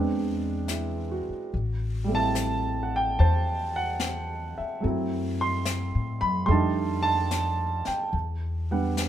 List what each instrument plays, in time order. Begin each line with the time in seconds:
Already playing: upright bass E2, grand piano G#3 B3 C4 D4 D5
0.68 grand piano E4, snare, hi-hat pedal
1.12 grand piano F#4
1.29 muted upright bass stroke
1.51 upright bass A1, brush sweep
2.04 grand piano G3 A3
2.12 grand piano C4 E4 A5
2.35 snare, hi-hat pedal
2.83 grand piano F#5
2.96 grand piano G5
3.17 upright bass E2, grand piano C5 A5, brush sweep
3.76 grand piano F#5
4.00 snare, hi-hat pedal
4.58 grand piano E5, muted upright bass stroke
4.80 upright bass F#2, grand piano F#3 A3 C4, brush sweep
4.86 grand piano E4
5.41 grand piano C6
5.65 snare, hi-hat pedal
5.95 upright bass A2
6.21 upright bass F#2, grand piano B5
6.46 upright bass F2, grand piano G3 A3 C6, brush sweep
6.50 grand piano D4 D#4 A5
7.03 grand piano A5
7.31 snare, hi-hat pedal
7.85 grand piano G5, muted upright bass stroke, snare
8.13 upright bass E2, brush sweep
8.71 grand piano G3 B3 D4 F#5
8.97 snare, hi-hat pedal